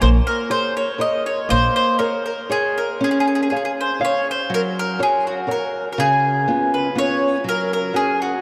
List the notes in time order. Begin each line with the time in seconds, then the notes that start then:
0.01 A#1 A#3 C5
0.27 A#4
0.50 G#4 A#4 C5 C#5
0.77 C#5
0.98 G#4 A#4 C#5 D#5
1.26 C#5
1.49 A#1 A#3 C5
1.76 C5
1.98 G#4 A#4 C#5
2.26 A#4
2.49 G#4 A#4 C#5
2.78 A#4
3.01 C#4 G#4
3.11 G#4
3.20 G#4
3.28 G#4
3.35 G#4
3.43 G#4
3.50 G#4 C#5 F5
3.57 G#4
3.65 G#4
3.81 C5
4.00 G#4 C#5 F5
4.05 C#5
4.31 C5
4.50 F#3
4.54 A#4
4.79 A#4
4.99 F#4 G#4 A#4 C#5
5.27 F#4
5.47 F#4 A#4 C#5
5.51 A#4
5.93 A#4
5.98 C#3 G#4
6.48 B3 C#4 F4
6.74 B4
6.95 B3 C#4 F4 C#5
7.44 F#3
7.49 A#4
7.73 A#4
7.93 C#4 F#4 G#4
8.22 F#4